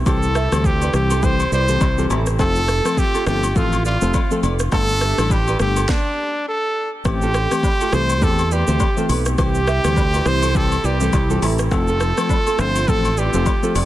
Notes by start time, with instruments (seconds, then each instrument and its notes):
Already playing: analog synth pad C4
0.06 fingered electric bass C2, analog synth pad C3 E4 G4, tine electric piano E3 G3 C4 G4, nylon-string guitar G4 C5, trumpet A4, kick, high agogo, shaker
0.22 shaker
0.35 nylon-string guitar C5 E5, cross-stick, shaker
0.52 fingered electric bass D2, tine electric piano E3 G3 C4 G4, cross-stick, high agogo, shaker
0.64 trumpet G4, kick, shaker
0.82 nylon-string guitar B4 D5, high agogo, shaker
0.93 fingered electric bass C2, tine electric piano E3 G3 C4 G4, trumpet G4, cross-stick, shaker
1.10 nylon-string guitar A4 C5, high agogo, shaker
1.22 tine electric piano E3 G3 C4 G4, nylon-string guitar G4 C5, trumpet C5, kick, shaker
1.40 high agogo, shaker
1.52 fingered electric bass C2, nylon-string guitar B4 D5, trumpet C5, shaker
1.69 tine electric piano E3 G3 C4 G4, nylon-string guitar A4 C5, shaker
1.81 fingered electric bass C2, kick, high agogo, low woodblock, shaker
1.98 tine electric piano E3 G3 C4 G4, nylon-string guitar F4 A4, shaker
2.10 fingered electric bass A1, nylon-string guitar E4 G4, high agogo, shaker
2.27 cross-stick, shaker
2.39 fingered electric bass F1, tine electric piano F3 A3 C4 A4, analog synth pad A3 F4, trumpet A4, kick, high agogo, shaker
2.55 nylon-string guitar F4 A4, shaker
2.68 nylon-string guitar A4 C5, cross-stick, shaker
2.85 tine electric piano F3 A3 C4 A4, cross-stick, high agogo, shaker
2.97 trumpet G4, kick, shaker
3.15 nylon-string guitar F4 A4, high agogo, shaker
3.26 fingered electric bass G1, tine electric piano F3 A3 C4 A4, nylon-string guitar F4 A4, trumpet G4, cross-stick, shaker
3.43 high agogo, shaker
3.55 fingered electric bass A1, tine electric piano F3 A3 C4 A4, trumpet F4, nylon-string guitar A4 C5, kick, shaker
3.73 high agogo, shaker
3.85 trumpet F4, nylon-string guitar B4 D5, shaker
4.01 fingered electric bass F1, tine electric piano F3 A3 C4 A4, nylon-string guitar A4 C5, shaker
4.14 kick, high agogo, low woodblock, shaker
4.31 tine electric piano F3 A3 C4 A4, nylon-string guitar F4 A4, shaker
4.43 fingered electric bass F1, nylon-string guitar B4 D5, high agogo, shaker
4.59 cross-stick, shaker
4.72 fingered electric bass G1, tine electric piano G3 A3 D4 A4, analog synth pad D4 G4, trumpet A4, nylon-string guitar A4 C5, kick, cross-stick, high agogo, shaker
4.88 shaker
5.01 nylon-string guitar C5 E5, cross-stick, shaker
5.18 fingered electric bass A1, tine electric piano G3 A3 D4 A4, cross-stick, high agogo, shaker
5.30 trumpet G4, kick, low woodblock, shaker
5.48 nylon-string guitar B4 D5, high agogo, shaker
5.59 fingered electric bass G1, tine electric piano G3 A3 D4 A4, trumpet G4, cross-stick, shaker
5.77 nylon-string guitar A4 C5, high agogo, shaker
5.89 trumpet D4, kick, snare
6.48 trumpet A4
7.05 fingered electric bass A1, tine electric piano E3 A3 C4 G4, analog synth pad A3 C4 G4, trumpet G4, kick, cross-stick, high agogo, shaker
7.22 nylon-string guitar F4 A4, shaker
7.34 nylon-string guitar A4 C5, cross-stick, shaker
7.51 tine electric piano E3 A3 C4 G4, cross-stick, high agogo, shaker
7.63 kick, low woodblock, shaker
7.81 nylon-string guitar F4 A4, high agogo, shaker
7.92 fingered electric bass C2, tine electric piano E3 A3 C4 G4, nylon-string guitar F4 A4, trumpet C5, cross-stick, shaker
8.10 high agogo, shaker
8.21 fingered electric bass E2, tine electric piano E3 A3 C4 G4, trumpet A4, nylon-string guitar A4 C5, kick, shaker
8.39 high agogo, shaker
8.51 trumpet G4, nylon-string guitar B4 D5, shaker
8.68 fingered electric bass D2, tine electric piano E3 A3 C4 G4, nylon-string guitar A4 C5, shaker
8.80 kick, high agogo, low woodblock, shaker
8.97 tine electric piano E3 A3 C4 G4, nylon-string guitar F4 A4, shaker
9.09 fingered electric bass B1, nylon-string guitar B4 D5, open hi-hat, high agogo, shaker
9.26 cross-stick, shaker
9.38 fingered electric bass C2, analog synth pad C3 E4, tine electric piano E3 G3 C4 G4, trumpet G4, nylon-string guitar G4 C5, kick, cross-stick, high agogo, shaker
9.55 shaker
9.67 nylon-string guitar C5 E5, cross-stick, shaker
9.84 fingered electric bass D2, tine electric piano E3 G3 C4 G4, cross-stick, high agogo, shaker
9.96 kick, low woodblock, shaker
10.14 nylon-string guitar B4 D5, high agogo, shaker
10.25 fingered electric bass C2, tine electric piano E3 G3 C4 G4, trumpet C5, cross-stick, shaker
10.42 nylon-string guitar A4 C5, high agogo, shaker
10.55 tine electric piano E3 G3 C4 G4, nylon-string guitar G4 C5, trumpet A4, kick, shaker
10.72 high agogo, shaker
10.84 fingered electric bass C2, trumpet G4, nylon-string guitar B4 D5, shaker
11.01 tine electric piano E3 G3 C4 G4, nylon-string guitar A4 C5, shaker
11.13 fingered electric bass C2, kick, high agogo, low woodblock, shaker
11.30 tine electric piano E3 G3 C4 G4, nylon-string guitar F4 A4, shaker
11.42 fingered electric bass A1, nylon-string guitar E4 G4, open hi-hat, high agogo, shaker
11.59 cross-stick, shaker
11.71 fingered electric bass F1, tine electric piano F3 A3 C4 A4, analog synth pad A3 F4, trumpet A4, kick, cross-stick, high agogo, shaker
11.88 nylon-string guitar F4 A4, shaker
12.01 nylon-string guitar A4 C5, cross-stick, shaker
12.17 tine electric piano F3 A3 C4 A4, cross-stick, high agogo, shaker
12.29 kick, low woodblock, shaker
12.47 nylon-string guitar F4 A4, high agogo, shaker
12.58 fingered electric bass G1, tine electric piano F3 A3 C4 A4, nylon-string guitar F4 A4, trumpet C5, cross-stick, shaker
12.76 high agogo, shaker
12.88 fingered electric bass A1, tine electric piano F3 A3 C4 A4, trumpet A4, nylon-string guitar A4 C5, kick, shaker
13.05 high agogo, shaker
13.17 trumpet G4, nylon-string guitar B4 D5, shaker
13.34 fingered electric bass F1, tine electric piano F3 A3 C4 A4, nylon-string guitar A4 C5, shaker
13.46 kick, high agogo, low woodblock, shaker
13.63 tine electric piano F3 A3 C4 A4, nylon-string guitar F4 A4, shaker
13.75 fingered electric bass F1, nylon-string guitar B4 D5, open hi-hat, high agogo, shaker